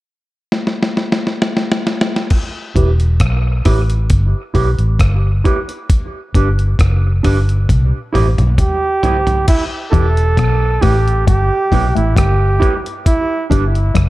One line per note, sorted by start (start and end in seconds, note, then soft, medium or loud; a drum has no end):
0.52 snare medium
0.67 snare medium
0.83 snare medium
0.97 snare medium
1.12 snare medium
1.27 snare medium
1.42 snare medium
1.57 snare medium
1.72 snare medium
1.87 snare medium
2.01 snare loud
2.16 snare medium
2.30 kick loud
2.30 crash medium
2.75 3.17 E1 loud
2.75 2.88 E4 medium
2.75 2.89 G4 medium
2.75 2.89 B4 medium
2.75 kick medium
2.75 closed hi-hat medium
3.00 closed hi-hat soft
3.20 3.62 B1 medium
3.20 kick loud
3.20 cross-stick loud
3.20 closed hi-hat medium
3.65 4.07 A1 medium
3.65 3.78 E4 medium
3.65 3.79 G4 medium
3.65 3.79 B4 medium
3.65 kick medium
3.65 cross-stick medium
3.65 open hi-hat medium
3.90 closed hi-hat medium
4.10 4.32 G1 medium
4.10 kick loud
4.10 closed hi-hat medium
4.54 4.77 B1 medium
4.54 4.67 E4 medium
4.54 4.68 G4 medium
4.54 4.68 B4 medium
4.54 kick medium
4.54 open hi-hat medium
4.79 4.98 A1 medium
4.79 closed hi-hat soft
4.99 5.41 G1 medium
4.99 kick loud
4.99 cross-stick loud
4.99 closed hi-hat medium
5.44 5.57 E4 medium
5.44 5.58 G4 medium
5.44 5.58 B4 medium
5.44 kick medium
5.44 closed hi-hat medium
5.68 muted clean electric guitar stroke soft
5.68 closed hi-hat soft
5.90 kick loud
5.90 closed hi-hat medium
6.34 6.76 G1 medium
6.34 6.47 D4 medium
6.34 6.48 G4 medium
6.34 6.48 B4 medium
6.34 kick medium
6.34 closed hi-hat medium
6.59 closed hi-hat soft
6.79 7.20 F#1 medium
6.79 kick loud
6.79 cross-stick loud
6.79 closed hi-hat medium
7.23 7.66 G1 medium
7.23 7.36 D4 medium
7.23 7.37 G4 medium
7.23 7.37 B4 medium
7.23 kick medium
7.23 cross-stick medium
7.23 open hi-hat medium
7.49 closed hi-hat soft
7.69 7.91 C2 loud
7.69 kick loud
7.69 closed hi-hat medium
7.69 high tom medium
8.13 8.36 A1 medium
8.13 8.26 E4 medium
8.13 8.26 G4 medium
8.13 8.27 C5 medium
8.13 open hi-hat soft
8.13 mid tom medium
8.38 8.57 B1 medium
8.38 closed hi-hat medium
8.38 mid tom medium
8.58 9.45 G4 medium
8.58 kick loud
8.58 closed hi-hat medium
8.58 mid tom medium
9.03 9.16 E4 medium
9.03 9.16 G4 medium
9.03 9.17 C5 medium
9.03 closed hi-hat medium
9.03 floor tom medium
9.27 closed hi-hat soft
9.27 floor tom medium
9.48 9.64 E4 medium
9.48 kick loud
9.48 closed hi-hat medium
9.48 crash medium
9.92 10.34 E1 medium
9.92 10.20 E2 medium
9.92 10.05 E4 medium
9.92 10.05 G4 medium
9.92 10.83 A4 loud
9.92 10.06 B4 medium
9.92 kick medium
9.92 closed hi-hat medium
10.17 closed hi-hat soft
10.37 10.79 B1 medium
10.37 10.64 B2 medium
10.37 kick loud
10.37 cross-stick loud
10.37 closed hi-hat medium
10.81 11.24 A1 medium
10.81 11.10 A2 medium
10.81 10.95 E4 medium
10.81 11.27 G4 medium
10.81 10.95 G4 medium
10.81 10.95 B4 medium
10.81 kick medium
10.81 cross-stick medium
10.81 open hi-hat medium
11.08 closed hi-hat soft
11.27 11.49 G1 loud
11.27 11.41 G2 medium
11.27 11.92 G4 medium
11.27 kick loud
11.27 closed hi-hat medium
11.72 11.94 B1 medium
11.72 11.86 B2 medium
11.72 11.85 E4 medium
11.72 11.85 G4 medium
11.72 11.86 B4 medium
11.72 kick medium
11.72 open hi-hat soft
11.95 12.16 A1 medium
11.95 12.08 A2 medium
11.95 12.18 E4 medium
11.95 closed hi-hat soft
12.16 12.58 G1 medium
12.16 12.43 G2 medium
12.16 12.80 G4 medium
12.16 kick loud
12.16 cross-stick loud
12.16 closed hi-hat loud
12.60 12.73 E4 medium
12.60 12.74 G4 medium
12.60 12.74 B4 medium
12.60 kick medium
12.60 closed hi-hat medium
12.84 muted clean electric guitar stroke medium
12.84 closed hi-hat soft
13.06 13.48 E4 loud
13.06 kick loud
13.06 closed hi-hat medium
13.50 13.92 G1 medium
13.50 13.78 G2 medium
13.50 13.63 D4 medium
13.50 13.64 G4 medium
13.50 13.64 B4 medium
13.50 kick medium
13.50 closed hi-hat medium
13.75 closed hi-hat soft
13.94 14.09 F#1 medium
13.94 14.09 F#2 medium
13.94 kick loud
13.94 cross-stick medium
13.94 closed hi-hat medium